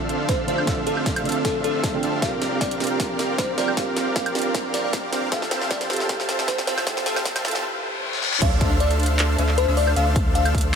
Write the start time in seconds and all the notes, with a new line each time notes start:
Already playing: D3 F3 A3 C4 D4 F4 G4 A4 C5 D5 E5 F5 E6
0.09 closed hi-hat
0.29 C5, kick, snare, closed hi-hat
0.47 D3 A3 C4 D4 F4 A4 C5 E5 F5, closed hi-hat
0.58 high woodblock
0.66 D3 A3 C4 D4 F4 A4 C5 E5 F5 E6, kick, snare, closed hi-hat
0.87 A4, closed hi-hat
0.97 high woodblock
1.06 kick, snare, closed hi-hat
1.16 closed hi-hat, high woodblock
1.24 D3 A3 C4 F4, closed hi-hat
1.28 E6, closed hi-hat
1.32 closed hi-hat
1.45 A4, kick, snare, closed hi-hat
1.64 A4, closed hi-hat
1.84 kick, snare, closed hi-hat
1.93 D3 A3 C4 F4 G5
2.03 D4 A4 C5 E5 F5, closed hi-hat
2.20 C3 F3 C4 D4 F4 G4 A#4 D5 F5, kick, snare, closed hi-hat, riser
2.42 snare, closed hi-hat
2.61 D5, kick, snare, closed hi-hat
2.71 closed hi-hat
2.78 C3 C4 D4 F4 A#4, snare, closed hi-hat
2.84 closed hi-hat
2.87 closed hi-hat
3.00 kick, snare, closed hi-hat
3.19 snare, closed hi-hat
3.38 C5, kick, snare, closed hi-hat
3.57 C3 C4 D4 F4 G4 A#4 C5 D5 F5, snare, closed hi-hat
3.68 high woodblock
3.75 C3 C4 D4 F4 G4 A#4 F5, kick, snare, closed hi-hat
3.97 snare, closed hi-hat
4.16 F5, kick, snare, closed hi-hat
4.26 closed hi-hat, high woodblock
4.33 C3 C4 D4 F4, snare, closed hi-hat
4.37 A#4, closed hi-hat
4.42 closed hi-hat
4.55 kick, snare, closed hi-hat
4.74 D5, snare, closed hi-hat
4.84 D5
4.93 kick, snare, closed hi-hat
5.12 C3 C4 D4 F4 G4 A#4 C5 D5 F5, snare, closed hi-hat
5.30 C3 A3 C4 F4 G4 A4 C5 E5 F5 G5 A5 E6, kick, snare, closed hi-hat
5.42 snare
5.51 snare, closed hi-hat
5.62 snare
5.71 D5, kick, snare, closed hi-hat
5.81 snare, closed hi-hat
5.88 C3 C4 F4 G4, snare, closed hi-hat
5.92 A4, closed hi-hat
5.96 snare, closed hi-hat
6.09 kick, snare, closed hi-hat
6.20 snare
6.29 snare, closed hi-hat
6.39 snare
6.48 C5, kick, snare, closed hi-hat
6.58 snare
6.66 C3 C4 E4 F4 G4 C5 E5 F5 G5 A5, snare, closed hi-hat
6.78 snare, high woodblock
6.85 C3 C4 F4 G4 C5 E5 F5 G5 A5, kick, snare, closed hi-hat
6.89 A4
6.97 snare
7.06 A4, snare, closed hi-hat
7.16 snare, high woodblock
7.25 kick, snare, closed hi-hat
7.36 snare, closed hi-hat, high woodblock
7.43 C3 C4 E4 F4 G4 A4, snare, closed hi-hat
7.48 closed hi-hat
7.51 snare, closed hi-hat
7.64 reverse cymbal
8.13 snare
8.22 snare
8.33 snare
8.42 D2 D4 A4 C5 E5 F5, kick, closed hi-hat, crash
8.61 kick, closed hi-hat
8.80 D5, closed hi-hat
8.91 closed hi-hat
9.00 closed hi-hat
9.03 closed hi-hat
9.06 closed hi-hat
9.19 clap, closed hi-hat
9.38 D2 D4 A4 C5 E5 F5, closed hi-hat
9.49 clap
9.58 C5, closed hi-hat
9.68 D2 D4 A4 C5 E5 F5
9.77 D5, open hi-hat
9.87 high woodblock
9.96 D2 D4 A4 C5 E5 F5, closed hi-hat
10.16 kick, closed hi-hat
10.35 F5, closed hi-hat
10.45 closed hi-hat, high woodblock
10.55 kick, closed hi-hat
10.58 closed hi-hat
10.61 closed hi-hat